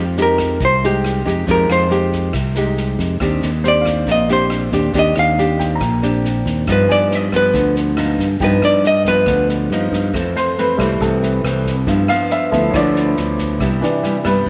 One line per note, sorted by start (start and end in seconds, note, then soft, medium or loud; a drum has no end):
0.00 0.58 F2 medium
0.00 0.59 F3 medium
0.17 0.61 G#3 soft
0.17 0.61 D#4 medium
0.17 0.61 G4 medium
0.17 snare soft
0.22 0.61 A#4 medium
0.38 kick soft
0.38 cross-stick medium
0.38 snare soft
0.60 1.22 C2 medium
0.60 1.46 C3 medium
0.60 kick medium
0.60 snare soft
0.65 0.84 C5 medium
0.83 1.24 G#3 medium
0.83 1.24 D#4 medium
0.83 1.24 G4 medium
0.83 1.46 G4 medium
0.83 snare soft
1.04 cross-stick medium
1.04 snare soft
1.25 1.47 F2 medium
1.25 1.44 G#3 medium
1.25 1.44 D#4 medium
1.25 1.45 G4 medium
1.25 kick soft
1.25 snare soft
1.47 1.68 F2 medium
1.47 2.33 F3 medium
1.47 1.88 G#3 medium
1.47 1.88 D#4 medium
1.47 1.88 G4 medium
1.47 kick medium
1.47 snare soft
1.51 1.71 A#4 medium
1.69 2.31 F2 medium
1.69 2.32 C5 medium
1.69 2.38 F5 soft
1.69 cross-stick medium
1.69 snare soft
1.90 2.34 G#3 soft
1.90 2.34 D#4 medium
1.90 2.34 G4 medium
1.90 snare soft
2.12 kick soft
2.12 snare soft
2.33 2.95 C2 medium
2.33 3.19 C3 medium
2.33 kick medium
2.33 cross-stick medium
2.33 snare soft
2.55 3.18 G#3 medium
2.55 3.18 D#4 medium
2.55 3.19 G4 medium
2.55 snare soft
2.77 snare soft
2.99 3.19 F2 medium
2.99 kick soft
2.99 snare soft
3.20 3.41 D#2 medium
3.20 4.06 D#3 medium
3.20 3.49 C4 medium
3.20 3.50 D4 medium
3.20 3.50 G4 medium
3.20 kick medium
3.20 cross-stick medium
3.20 snare soft
3.42 4.04 D#2 medium
3.42 snare soft
3.64 4.26 C4 medium
3.64 4.26 D4 medium
3.64 4.27 G4 medium
3.64 4.32 C5 medium
3.64 snare soft
3.68 4.07 D5 medium
3.81 4.46 F5 soft
3.85 kick soft
3.85 cross-stick medium
3.85 snare soft
4.07 4.69 A#1 loud
4.07 4.92 A#2 medium
4.07 kick medium
4.07 snare soft
4.12 4.31 D#5 medium
4.28 4.69 C4 medium
4.28 4.70 D4 medium
4.28 4.70 G4 medium
4.28 snare soft
4.33 4.92 C5 medium
4.50 cross-stick medium
4.50 snare soft
4.72 4.93 D#2 loud
4.72 4.91 C4 medium
4.72 4.91 D4 medium
4.72 4.91 G4 medium
4.72 kick soft
4.72 snare soft
4.93 5.14 D#2 medium
4.93 5.79 D#3 medium
4.93 5.35 C4 medium
4.93 5.35 D4 medium
4.93 5.35 G4 medium
4.93 kick medium
4.93 snare soft
4.99 5.18 D#5 medium
5.16 5.78 D#2 medium
5.16 5.79 F5 medium
5.16 cross-stick medium
5.16 snare soft
5.38 5.81 C4 medium
5.38 5.82 D4 medium
5.38 5.82 G4 medium
5.38 snare soft
5.59 6.28 G5 soft
5.59 kick soft
5.59 snare soft
5.75 6.41 A#5 soft
5.81 6.42 A#1 medium
5.81 6.66 A#2 medium
5.81 kick medium
5.81 cross-stick medium
5.81 snare soft
6.02 6.64 C4 medium
6.02 6.65 D4 medium
6.02 6.65 G4 medium
6.02 snare soft
6.25 snare soft
6.46 6.66 D#2 medium
6.46 kick soft
6.46 snare soft
6.67 6.88 G2 medium
6.67 7.53 G2 medium
6.67 7.30 F3 medium
6.67 7.30 B3 medium
6.67 7.30 D#4 medium
6.67 kick medium
6.67 cross-stick medium
6.67 snare soft
6.72 6.91 B4 medium
6.89 7.51 G2 medium
6.89 7.12 D5 medium
6.89 7.57 G#5 soft
6.89 snare soft
7.11 snare soft
7.15 7.34 D#5 loud
7.32 7.94 F3 medium
7.32 7.94 B3 medium
7.32 kick soft
7.32 cross-stick medium
7.32 snare soft
7.36 7.75 B4 medium
7.54 8.15 D2 loud
7.54 8.39 D3 medium
7.54 kick medium
7.54 snare soft
7.76 snare soft
7.97 8.25 F3 medium
7.97 8.26 B3 medium
7.97 8.26 D#4 medium
7.97 cross-stick medium
7.97 snare soft
8.18 8.39 G2 medium
8.18 kick soft
8.18 snare soft
8.40 8.61 G2 medium
8.40 9.26 G2 medium
8.40 8.85 F3 medium
8.40 8.85 B3 medium
8.40 8.85 D#4 medium
8.40 9.09 G5 soft
8.40 kick medium
8.40 snare soft
8.44 8.64 B4 medium
8.62 9.24 G2 loud
8.62 8.85 D5 medium
8.62 cross-stick medium
8.62 snare soft
8.84 9.07 D#5 medium
8.84 snare soft
9.05 9.68 F3 medium
9.05 9.68 B3 medium
9.05 9.47 B4 medium
9.05 kick soft
9.05 snare soft
9.26 9.68 D2 loud
9.26 9.68 D3 medium
9.26 kick medium
9.26 cross-stick medium
9.26 snare soft
9.49 snare soft
9.70 9.91 G2 loud
9.70 10.11 F3 medium
9.70 10.11 B3 medium
9.70 10.12 D#4 medium
9.70 snare soft
9.92 10.12 G2 medium
9.92 kick soft
9.92 snare soft
10.13 10.98 F2 medium
10.13 10.34 F2 medium
10.13 10.54 E3 soft
10.13 10.54 A3 medium
10.13 10.54 C4 medium
10.13 kick medium
10.13 cross-stick medium
10.13 snare soft
10.36 10.57 C5 medium
10.36 snare soft
10.58 10.76 E3 soft
10.58 10.77 A3 medium
10.58 10.77 C4 medium
10.58 10.99 B4 medium
10.58 snare soft
10.77 10.99 C2 medium
10.77 11.41 E3 medium
10.77 11.40 G3 soft
10.77 11.40 A3 soft
10.77 11.41 A3 medium
10.77 11.42 C4 medium
10.77 11.41 E4 soft
10.77 kick soft
10.77 cross-stick medium
10.77 snare soft
11.00 11.41 C2 loud
11.00 11.85 C3 medium
11.00 11.41 A4 soft
11.00 kick medium
11.00 snare soft
11.22 snare soft
11.44 11.84 C2 medium
11.44 11.73 E3 medium
11.44 11.73 A3 soft
11.44 11.74 C4 medium
11.44 cross-stick medium
11.44 snare soft
11.65 kick soft
11.65 snare soft
11.87 12.07 G2 medium
11.87 12.72 G2 medium
11.87 12.06 F3 medium
11.87 12.06 B3 medium
11.87 12.06 E4 medium
11.87 kick medium
11.87 snare soft
12.08 12.71 F3 medium
12.08 12.71 B3 medium
12.08 12.71 E4 medium
12.08 12.30 F5 medium
12.08 cross-stick medium
12.08 snare soft
12.30 12.72 E5 medium
12.30 snare soft
12.52 12.73 D2 medium
12.52 12.81 F3 soft
12.52 12.81 A3 soft
12.52 12.81 B3 soft
12.52 12.81 E4 soft
12.52 kick soft
12.52 snare soft
12.71 13.14 D2 loud
12.71 13.59 D3 medium
12.71 12.73 C#5 soft
12.71 kick medium
12.71 cross-stick medium
12.71 snare soft
12.75 13.58 F3 medium
12.75 13.58 B3 medium
12.75 13.58 E4 medium
12.75 13.15 D5 medium
12.96 snare soft
13.17 13.58 D2 medium
13.17 snare soft
13.38 kick soft
13.38 snare soft
13.60 13.81 C2 medium
13.60 14.46 C3 medium
13.60 13.89 G3 medium
13.60 13.89 B3 medium
13.60 13.89 E4 medium
13.60 kick medium
13.60 cross-stick medium
13.60 snare soft
13.81 14.49 E3 soft
13.81 14.49 D4 soft
13.81 14.25 B4 soft
13.81 snare soft
14.03 14.17 G3 medium
14.03 14.17 B3 soft
14.03 14.17 E4 medium
14.03 snare soft
14.24 14.46 G2 medium
14.24 14.49 G3 medium
14.24 14.49 B3 medium
14.24 14.49 E4 medium
14.24 14.47 B4 medium
14.24 kick soft
14.24 cross-stick medium
14.24 snare soft